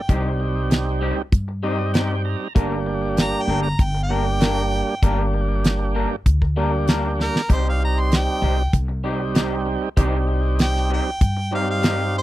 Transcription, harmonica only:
0.00 0.28 G5 medium
3.21 3.43 A#5 medium
3.42 3.60 G5 medium
3.63 3.85 A#5 medium
3.83 4.01 G5 medium
4.03 5.21 G5 medium
7.22 7.50 A#4 medium
7.53 7.66 C5 medium
7.69 7.81 F5 medium
7.84 8.01 A#5 medium
8.00 8.17 C6 medium
8.16 8.74 G5 medium
10.62 10.91 G5 medium
10.93 11.52 G5 medium
11.55 11.68 F5 medium
11.71 12.14 F5 medium
12.18 12.22 C5 medium

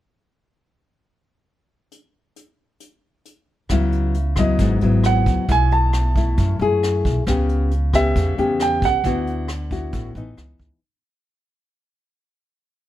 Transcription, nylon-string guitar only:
3.71 4.58 C#3 medium
3.71 4.15 F#3 medium
3.71 4.15 B3 soft
3.71 4.15 E4 medium
4.38 4.79 F#3 medium
4.38 4.79 B3 medium
4.38 4.79 E4 medium
4.60 5.47 G#2 medium
4.82 5.45 F#3 medium
4.82 5.46 B3 medium
4.82 5.46 E4 medium
5.49 6.36 B2 medium
5.49 6.12 A3 medium
5.49 6.12 E4 medium
6.17 6.57 A3 soft
6.17 6.57 E4 medium
6.39 7.25 F#2 medium
6.61 7.24 A3 medium
6.61 7.24 E4 medium
6.61 7.24 G#4 medium
7.27 8.14 C#3 medium
7.27 7.71 B3 medium
7.27 7.71 C#4 medium
7.27 7.72 G4 medium
7.94 8.35 B3 medium
7.94 8.35 C#4 medium
7.94 8.35 G4 medium
8.17 9.03 C#3 medium
8.38 9.01 B3 medium
8.38 9.02 C#4 medium
8.38 9.02 G4 medium
9.05 9.92 D3 medium
9.05 9.49 B3 medium
9.05 9.49 E4 medium
9.05 9.50 F#4 medium
9.71 10.12 B3 medium
9.71 10.13 E4 medium
9.71 10.13 F#4 medium
9.93 10.35 A2 medium
10.16 10.79 E3 medium
10.16 10.79 B3 medium
10.16 10.80 D#4 medium

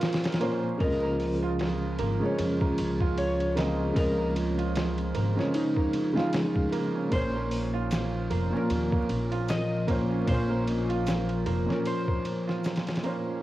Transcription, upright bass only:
0.81 1.96 C#2 medium
1.99 2.19 G#1 medium
2.38 2.58 F2 loud
2.78 3.93 C#2 loud
3.97 5.12 C#2 loud
5.15 5.35 G#1 medium
7.12 8.27 A#1 loud
8.31 8.50 F1 medium
8.70 8.90 D#2 loud
9.10 10.25 A#1 loud
10.28 11.43 A#1 loud
11.46 11.66 F1 medium

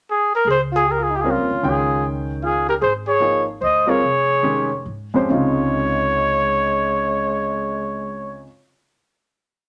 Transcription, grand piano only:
1.24 1.47 G3 soft
1.24 1.47 C4 soft
1.24 1.47 F4 soft
1.24 1.48 A#4 medium
1.63 2.73 D#3 medium
1.63 2.73 G#3 soft
1.63 2.73 C#4 medium
1.63 2.73 G5 medium
3.20 3.44 F3 soft
3.20 3.44 A#3 soft
3.20 3.44 D#4 soft
3.20 3.45 G#4 medium
3.86 3.99 G3 medium
3.86 4.00 C4 medium
3.86 4.00 F4 medium
3.86 4.00 A#4 medium
4.43 4.68 D#3 medium
4.43 4.68 G#3 medium
4.43 4.68 C#4 soft
4.43 4.69 G4 medium
5.14 5.29 F2 medium
5.14 5.28 G#3 medium
5.14 5.30 C#4 medium
5.14 5.30 G4 medium
5.14 5.30 C5 medium
5.29 8.45 C3 medium
5.29 8.43 C#3 medium
5.29 8.44 G#3 medium
5.29 8.45 D#4 medium
5.29 8.46 F4 medium

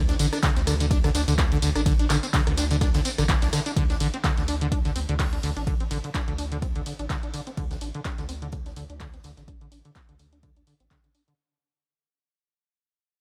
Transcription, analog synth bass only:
0.00 0.14 D2 loud
0.19 0.29 A1 medium
0.56 1.10 D2 medium
1.15 1.25 D2 medium
1.28 1.58 D2 loud
1.62 1.72 D2 loud
1.75 2.06 A1 medium
2.10 2.20 A1 medium
2.47 3.01 D2 medium
3.18 3.36 A1 loud
3.42 3.50 C2 loud
3.77 3.95 D2 medium
4.00 4.10 A1 medium
4.37 4.91 D2 medium
4.96 5.06 D2 medium
5.09 5.39 D2 loud
5.43 5.53 D2 loud
5.56 5.87 A1 medium
5.91 6.01 A1 medium
6.28 6.82 D2 medium
6.99 7.07 A1 medium
7.57 7.76 D2 loud
7.81 7.91 A1 medium
8.18 8.72 D2 medium
8.77 8.86 D2 medium
8.90 9.20 D2 medium
9.24 9.34 D2 medium
9.37 9.68 A1 medium
9.72 9.82 A1 medium
10.09 10.63 D2 medium
10.80 10.88 A1 medium

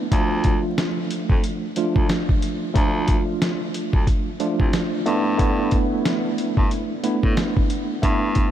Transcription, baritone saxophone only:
0.12 0.59 D2 loud
1.30 1.42 F2 medium
1.96 2.08 D2 medium
2.76 3.22 D2 loud
3.93 4.06 D2 medium
4.60 4.72 C2 medium
5.07 5.83 G2 loud
6.57 6.70 G2 medium
7.24 7.36 A2 medium
8.03 8.50 G2 loud

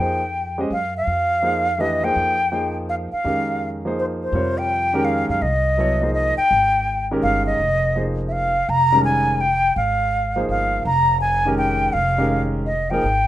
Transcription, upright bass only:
0.00 0.67 F2 medium
0.70 1.04 F#2 medium
1.07 2.12 F2 medium
2.16 3.08 F2 medium
3.13 muted upright bass stroke soft
3.25 4.30 F2 medium
4.32 5.25 F2 medium
5.29 5.41 F#2 medium
5.42 6.34 C2 medium
6.38 muted upright bass stroke soft
6.51 7.19 G#1 medium
7.23 7.57 G1 medium
7.59 8.64 F1 medium
8.69 9.73 F1 medium
9.76 10.45 G#1 medium
10.49 10.83 G1 medium
10.85 11.90 F1 medium
11.94 12.99 F1 medium
13.04 13.27 G#1 medium

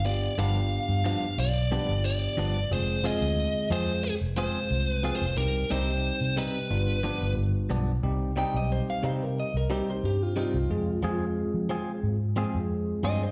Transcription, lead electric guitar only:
0.06 0.36 D5 medium
0.39 1.05 F5 loud
1.06 1.39 F5 loud
1.40 2.04 D5 loud
2.05 2.73 D5 loud
2.73 3.06 C5 loud
3.06 3.68 D#5 loud
3.73 4.04 C5 medium
4.04 4.13 G#4 medium
4.38 4.93 C5 loud
4.93 5.15 B4 loud
5.16 5.36 C5 medium
5.38 5.71 A#4 medium
5.71 6.38 C5 medium
6.39 7.34 B4 medium

